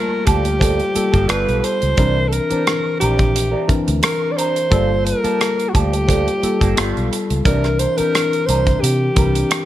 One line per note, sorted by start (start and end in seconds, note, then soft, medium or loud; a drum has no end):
0.00 0.94 G3 medium
0.00 1.32 A3 soft
0.00 0.95 A#3 medium
0.00 0.95 F4 medium
0.00 0.28 A#4 medium
0.00 1.32 A5 medium
0.10 muted clean electric guitar stroke soft
0.25 0.79 D2 medium
0.25 0.45 F3 medium
0.25 0.44 A#3 medium
0.25 0.44 D4 medium
0.25 1.30 G4 medium
0.25 0.43 A4 medium
0.25 kick medium
0.25 closed hi-hat medium
0.44 muted clean electric guitar stroke soft
0.44 closed hi-hat soft
0.59 0.79 F3 medium
0.59 0.79 A#3 medium
0.59 0.79 D4 medium
0.59 0.79 A4 medium
0.59 kick medium
0.59 closed hi-hat medium
0.80 closed hi-hat soft
0.94 1.27 G3 medium
0.94 1.30 A#3 medium
0.94 1.29 F4 medium
0.94 1.29 A4 medium
0.94 muted clean electric guitar stroke soft
0.94 muted fingered electric bass stroke soft
0.94 closed hi-hat medium
1.12 1.26 G1 medium
1.12 1.26 F3 soft
1.12 1.26 A#3 medium
1.12 1.25 D4 soft
1.12 1.25 A4 medium
1.12 kick medium
1.12 closed hi-hat soft
1.28 1.61 G3 medium
1.28 1.85 G3 medium
1.28 1.61 B3 medium
1.28 1.85 B3 medium
1.28 1.61 F4 medium
1.28 1.86 F4 medium
1.28 1.86 A4 medium
1.28 1.59 B4 medium
1.28 1.61 B4 medium
1.28 cross-stick loud
1.28 closed hi-hat medium
1.49 1.60 B1 medium
1.49 closed hi-hat soft
1.59 1.66 B4 medium
1.59 muted clean electric guitar stroke soft
1.64 2.30 C5 loud
1.64 closed hi-hat medium
1.81 1.95 C#2 medium
1.81 muted clean electric guitar stroke soft
1.81 closed hi-hat soft
1.97 2.38 C2 medium
1.97 2.39 E3 medium
1.97 2.16 G3 medium
1.97 2.40 C4 medium
1.97 2.16 D4 medium
1.97 2.40 D4 medium
1.97 2.16 E4 medium
1.97 2.17 A#4 medium
1.97 2.40 A#4 medium
1.97 kick medium
1.97 closed hi-hat medium
2.28 2.34 A4 medium
2.28 muted clean electric guitar stroke soft
2.33 3.00 A#4 medium
2.33 closed hi-hat medium
2.50 3.45 E3 medium
2.50 2.63 G3 soft
2.50 3.45 C4 medium
2.50 2.63 D4 soft
2.50 3.45 D4 medium
2.50 2.63 E4 soft
2.50 2.62 A#4 soft
2.50 3.45 C5 medium
2.50 muted fingered electric bass stroke soft
2.50 closed hi-hat soft
2.67 cross-stick medium
2.67 closed hi-hat medium
2.84 muted clean electric guitar stroke soft
2.99 3.54 A#1 medium
2.99 3.18 G3 medium
2.99 3.18 D4 medium
2.99 3.18 E4 medium
2.99 3.73 G4 medium
2.99 3.17 A#4 medium
2.99 closed hi-hat medium
3.18 muted clean electric guitar stroke soft
3.18 kick medium
3.18 closed hi-hat soft
3.34 muted clean electric guitar stroke soft
3.34 closed hi-hat medium
3.51 3.67 G3 medium
3.51 3.68 D4 medium
3.51 3.68 E4 medium
3.51 3.68 A#4 medium
3.68 4.51 E3 medium
3.68 4.51 C4 medium
3.68 4.51 D4 medium
3.68 4.52 A#4 medium
3.68 muted clean electric guitar stroke soft
3.68 muted fingered electric bass stroke soft
3.68 kick medium
3.68 closed hi-hat medium
3.87 4.00 D2 medium
3.87 muted clean electric guitar stroke soft
3.87 closed hi-hat soft
4.03 4.33 A#4 medium
4.03 muted clean electric guitar stroke soft
4.03 cross-stick loud
4.03 closed hi-hat loud
4.22 muted clean electric guitar stroke soft
4.32 4.38 D5 medium
4.36 4.55 G3 medium
4.36 4.56 D4 medium
4.36 4.56 E4 medium
4.36 4.55 A#4 medium
4.36 5.07 C5 medium
4.36 closed hi-hat medium
4.56 muted clean electric guitar stroke soft
4.56 closed hi-hat soft
4.70 5.12 G1 medium
4.70 4.90 F3 medium
4.70 5.12 G3 medium
4.70 5.13 A#3 medium
4.70 4.90 A#3 medium
4.70 4.90 D4 medium
4.70 5.13 F4 medium
4.70 5.13 A4 medium
4.70 4.90 A4 medium
4.70 kick medium
4.70 closed hi-hat medium
5.05 5.71 A#4 medium
5.05 muted clean electric guitar stroke soft
5.05 closed hi-hat medium
5.23 5.37 F3 soft
5.23 6.18 G3 medium
5.23 6.18 A#3 medium
5.23 5.37 A#3 soft
5.23 5.37 D4 soft
5.23 6.19 F4 soft
5.23 5.36 A4 soft
5.23 6.19 A5 medium
5.23 muted fingered electric bass stroke soft
5.23 closed hi-hat soft
5.41 cross-stick medium
5.41 closed hi-hat medium
5.58 muted clean electric guitar stroke soft
5.58 closed hi-hat soft
5.69 5.75 F#4 soft
5.74 6.27 D2 medium
5.74 5.92 F3 medium
5.74 5.93 A#3 medium
5.74 5.92 D4 medium
5.74 7.11 G4 medium
5.74 5.92 A4 medium
5.74 kick medium
5.74 closed hi-hat medium
5.93 muted clean electric guitar stroke soft
5.93 closed hi-hat soft
6.08 6.26 F3 medium
6.08 6.26 A#3 medium
6.08 6.27 D4 medium
6.08 6.27 A4 medium
6.08 kick medium
6.08 closed hi-hat medium
6.28 closed hi-hat soft
6.42 6.75 G3 medium
6.42 6.77 A#3 medium
6.42 6.76 F4 medium
6.42 6.77 A4 medium
6.42 muted clean electric guitar stroke soft
6.42 muted fingered electric bass stroke soft
6.42 closed hi-hat medium
6.61 6.73 G1 medium
6.61 6.74 F3 soft
6.61 6.74 A#3 medium
6.61 6.74 D4 medium
6.61 6.73 A4 medium
6.61 kick medium
6.61 closed hi-hat soft
6.76 6.92 G1 medium
6.76 7.33 G3 medium
6.76 7.09 G3 medium
6.76 7.33 B3 medium
6.76 7.09 B3 medium
6.76 7.33 F4 medium
6.76 7.09 F4 medium
6.76 7.33 A4 medium
6.76 7.09 B4 medium
6.76 cross-stick loud
6.76 closed hi-hat loud
6.97 7.08 B1 medium
6.97 closed hi-hat soft
7.11 muted clean electric guitar stroke soft
7.11 closed hi-hat medium
7.30 7.42 C#2 medium
7.30 muted clean electric guitar stroke soft
7.30 closed hi-hat soft
7.44 7.85 C2 medium
7.44 7.86 E3 medium
7.44 7.64 G3 medium
7.44 7.86 C4 medium
7.44 7.87 D4 medium
7.44 7.64 D4 medium
7.44 7.64 E4 medium
7.44 7.80 A#4 medium
7.44 7.87 A#4 medium
7.44 7.65 A#4 medium
7.44 kick medium
7.44 closed hi-hat medium
7.64 cross-stick soft
7.64 closed hi-hat soft
7.79 7.99 C5 medium
7.79 muted clean electric guitar stroke soft
7.79 closed hi-hat medium
7.96 8.92 E3 medium
7.96 8.11 G3 soft
7.96 8.92 C4 medium
7.96 8.92 D4 medium
7.96 8.11 D4 soft
7.96 8.10 E4 soft
7.96 8.48 A#4 medium
7.96 8.10 A#4 medium
7.96 8.92 A#4 medium
7.96 muted fingered electric bass stroke soft
7.96 closed hi-hat soft
8.15 cross-stick medium
8.15 closed hi-hat medium
8.33 muted clean electric guitar stroke soft
8.33 closed hi-hat soft
8.46 8.74 C2 medium
8.46 8.66 G3 medium
8.46 8.66 D4 medium
8.46 8.66 E4 medium
8.46 8.65 A#4 medium
8.46 8.82 C5 medium
8.46 closed hi-hat medium
8.66 muted clean electric guitar stroke soft
8.66 kick medium
8.66 closed hi-hat soft
8.81 9.08 C3 medium
8.81 9.65 G4 medium
8.81 muted clean electric guitar stroke soft
8.81 closed hi-hat medium
9.15 9.43 C2 medium
9.15 9.65 E3 medium
9.15 9.30 G3 soft
9.15 9.65 C4 medium
9.15 9.65 D4 medium
9.15 9.31 D4 soft
9.15 9.31 E4 soft
9.15 9.65 A#4 medium
9.15 9.31 A#4 soft
9.15 kick medium
9.15 closed hi-hat medium
9.35 muted clean electric guitar stroke soft
9.35 closed hi-hat soft
9.51 muted clean electric guitar stroke soft
9.51 cross-stick loud
9.51 closed hi-hat medium